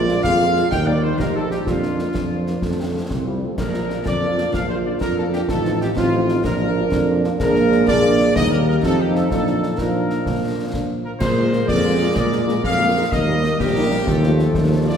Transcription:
Already playing: A#1 G#3 F4 D5
0.08 G#3 A#3 F4, snare
0.23 F2 G#3 F4 F5, concert bass drum, snare
0.40 G#3 A#3 F4
0.56 G#3 A#3 F4, snare
0.70 D#2 A#3 D#4 G5, concert bass drum, snare
0.86 G3 A#3 D#4 D5
1.02 G3 A#3 D#4 C5
1.18 A#1 A#3 D#4 G4 A#4, concert bass drum, snare
1.35 G3 A#3 D#4 A4
1.50 G3 A#3 D#4 G4, snare
1.66 F2 A#3 D4 F4, concert bass drum, snare
1.83 A#3 D4, snare
1.99 A#3 D4, snare
2.14 F2 F3, concert bass drum, snare
2.32 A#3 D4
2.47 A#3 D4, snare
2.62 F2 A3, concert bass drum, snare
2.79 A3 C4 F4
2.94 A3 C4 F4
3.09 C2 C4, concert bass drum, snare
3.26 G3 A3 C4 F4
3.43 A3 C4 F4
3.57 A#1 F3 D4 A#4, concert bass drum, snare, crash
3.74 A#3 D4 F4, snare
3.90 A#3 D4 F4, snare
4.05 F2 F4 D5, concert bass drum, snare
4.22 A#3 D4 F4
4.38 A#3 D4 F4, snare
4.53 A#1 F5, concert bass drum, snare
4.68 A#3 D4 F4 C5
4.84 A#3 D4 F4 D5
5.01 F2 A#4, concert bass drum, snare
5.16 A#3 D4 F4 A4
5.33 A#3 D4 F4 G4, snare
5.47 A1 F3 D#4 A4, concert bass drum, snare
5.65 C4 D#4 F4, snare
5.81 C4 D#4 F4 G4, snare
5.96 A1 C4 F4, concert bass drum, snare
6.13 C4 D#4 F4
6.29 C4 D#4 F4, snare
6.43 A#1 D4 A#4, concert bass drum, snare
6.61 A#3 D4 F4
6.77 A#3 D4 F4
6.91 F2 D4, concert bass drum, snare
7.09 A#3 D4 F4
7.24 A#3 D4 F4, snare
7.39 A#1 G#3 A#3 D4 G#4 A#4, concert bass drum, snare, crash
7.56 snare
7.72 snare
7.87 A#1 A#3 D4 G#4 D5, concert bass drum, snare
8.20 snare
8.35 D#2 G3 A#3 D#4 G4 D#5, concert bass drum, snare
8.50 A#4
8.67 A#4
8.82 F2 F3 C4 D#4 F4 A4, concert bass drum, snare
8.98 G4
9.14 A4, snare
9.30 A#2 F3 D4 F4 A4, concert bass drum, snare
9.47 snare
9.63 snare
9.77 A#2 F3 D4 F4 A#4, concert bass drum, snare
10.10 snare
10.26 A#2 D4, concert bass drum, snare
10.73 A#2, concert bass drum, snare
11.04 A#4
11.19 A#2 G#3 A#3 G#4 A#4 C5, concert bass drum, snare, crash
11.37 G#3 A#3 F4
11.53 G#3 A#3 F4, snare
11.68 F2 G#4 A#4 D5, concert bass drum, snare
11.84 G#3 A#3 F4
12.01 G#3 A#3 F4
12.15 A#2 G#4 A#4 D5, concert bass drum, snare
12.32 G#3 A#3 F4, snare
12.47 G#3 A#3 F4, snare
12.63 F2 G#4 A#4 F5, concert bass drum, snare
12.78 G#3 A#3 F4
12.95 G#3 A#3 F4
13.11 D#2 G3 A#3 G4 A#4 D#5, concert bass drum, snare
13.26 G3 A#3 D#4
13.43 G3 A#3 D#4, snare
13.59 A#1 G4 A#4, concert bass drum, snare
13.74 G3 A#3 D#4
13.90 G3 A#3 D#4
14.06 D#2 F3 A3 F4 A4, concert bass drum, snare
14.22 F3 A3 F4, snare
14.38 F3 A3 F4, snare
14.53 D#2, concert bass drum, snare
14.69 F3 A3 F4
14.85 F3 A3 F4 D5

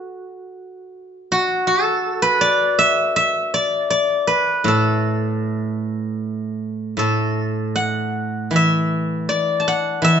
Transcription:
Already playing: F#4 A4
1.32 F#4
1.67 A4
2.22 B4
2.41 D5
2.79 E5
3.16 E5
3.54 D5
3.90 D5
4.27 B4
4.64 A2 A4
6.97 A2 A4
7.76 F#5
8.51 E3
8.56 E5
9.29 D5
9.60 A5
9.68 F#5
10.02 E3 E5

